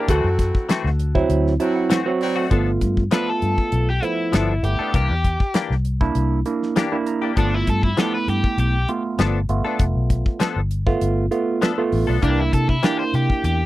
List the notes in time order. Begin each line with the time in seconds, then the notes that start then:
0.08 D2 E3 F#3 A3 C4 E4 F#4 A4, kick, closed hi-hat
0.24 F#2
0.39 kick, snare, closed hi-hat
0.55 kick
0.69 E3 A3 C4 F#4, snare, closed hi-hat
0.84 D2, snare
0.99 closed hi-hat
1.15 F#3 C4 E4, kick
1.29 D2, closed hi-hat
1.47 snare
1.60 F#3 C4 E4 F#4 A5, closed hi-hat
1.76 F#5
1.90 E3 A3 C4 F#4 E5, snare, closed hi-hat
2.06 F#3 C4 F#4
2.21 F#3 C4 E4 F#4 D5, open hi-hat
2.36 A3 C4 F#4
2.50 G1 F3 A3 B3 D4 F4 A4, kick, closed hi-hat
2.81 G2, kick, closed hi-hat
2.97 kick
3.11 F3 A3 B3 D4 F4 A4 B4, snare, closed hi-hat
3.29 A4
3.42 G2, closed hi-hat
3.58 kick
3.72 B1, closed hi-hat
3.90 G4
4.02 F3 A3 B3 E4, closed hi-hat
4.33 G1 F3 B3 D4 A4, snare, closed hi-hat
4.63 G1 A3 B3 E4 G4, closed hi-hat
4.79 B3 D4 A4
4.94 C2 E3 A#3 D4 G4, kick, closed hi-hat
5.10 E2
5.24 kick, closed hi-hat
5.40 kick
5.54 E3 A#3 D4 G4, snare, closed hi-hat
5.70 C2, snare
5.85 closed hi-hat
6.01 A#3 D4 E4, kick
6.15 C2, closed hi-hat
6.46 A#3 D4 E4, closed hi-hat
6.63 snare
6.76 E3 A#3 D4 G4 D5, snare, closed hi-hat
6.92 A#3 D4 E4
7.06 A#5, closed hi-hat
7.22 A#3 D4 G4
7.36 G1 F3 A3 B3 D4 F4 A4, kick, closed hi-hat
7.54 E4
7.67 G2 A4, kick, closed hi-hat
7.83 E4, kick
7.97 F3 A3 B3 D4 E4 G4 A4, snare, closed hi-hat
8.15 B4
8.28 G2 G4, closed hi-hat
8.44 kick
8.58 B1 G4, closed hi-hat
8.88 A3 B3 F4, closed hi-hat
9.19 G1 F3 B3 D4 A4, snare, closed hi-hat
9.49 G1 A3 B3 F4, closed hi-hat
9.65 B3 D4 A4
9.79 F1, kick, closed hi-hat
9.95 B1
10.10 kick, closed hi-hat
10.26 kick
10.40 F3 B3 D4 A4, snare, closed hi-hat
10.56 G1
10.71 closed hi-hat
10.86 A3 B3 F4, kick
11.01 G1, closed hi-hat
11.31 A3 B3 F4, closed hi-hat
11.62 F3 B3 D4 A4, snare, closed hi-hat
11.78 A3 B3 F4
11.92 A1, open hi-hat
12.07 B1 B3 D4 A4
12.22 C2 E3 A#3 D4 E4 G4, kick, closed hi-hat
12.39 E4
12.53 C3 A4, kick, closed hi-hat
12.69 E4, kick
12.83 E3 A#3 D4 E4 G4, snare, closed hi-hat
12.99 C5
13.14 C3 G4, closed hi-hat
13.30 kick
13.44 E2 G4, closed hi-hat